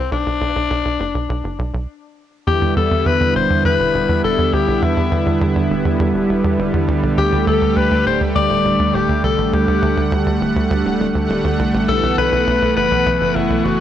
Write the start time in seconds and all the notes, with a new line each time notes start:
Already playing: C2 C4
0.12 B1 D4
0.26 B1
0.41 B1
0.56 B1
0.70 B1
0.85 B1
1.00 F#1
1.15 B1
1.29 B1
1.44 F#1
1.59 B1
1.74 B1
2.47 E2 D3 G3 B3 E4 G4
2.62 E2
2.76 E2 A4
2.91 E2
3.06 E2 B4
3.20 E2
3.35 E1 C5
3.50 E2
3.65 E2 B4
3.79 E1
3.94 E1
4.09 E2
4.23 E1 A4
4.38 E2
4.53 D2 G4
4.68 B1
4.82 E2 E4
4.97 E2
5.12 E2
5.26 E2
5.41 E2
5.56 E2
5.70 E1
5.85 E2
6.00 E2
6.14 E1
6.29 E1
6.44 E2
6.58 E1
6.73 E2
6.88 D2
7.03 B1
7.17 D2 A3 G4
7.32 D2
7.47 D2 A4
7.61 D2
7.76 D2 B4
7.91 D2
8.06 D1 C5
8.21 D2
8.35 D2 D5
8.50 D1
8.65 D1
8.79 D2
8.94 D1 G4
9.09 D2
9.23 C2 A4
9.38 A1
9.53 D2 G4 F#5
9.68 D2
9.82 D2
9.97 D2
10.12 D2
10.26 D2
10.41 D1
10.56 D2
10.71 D2
10.85 D1
11.00 D1
11.15 D2
11.29 D1
11.44 D2
11.59 C2
11.74 A1
11.88 B1 E3 B3 A4
12.03 B1
12.18 B1 B4
12.32 B1
12.47 B1
12.62 B1
12.76 F#1 B4
12.91 B1
13.06 B1
13.21 F#1
13.35 F#1 E4
13.50 B1
13.64 F#1 F#4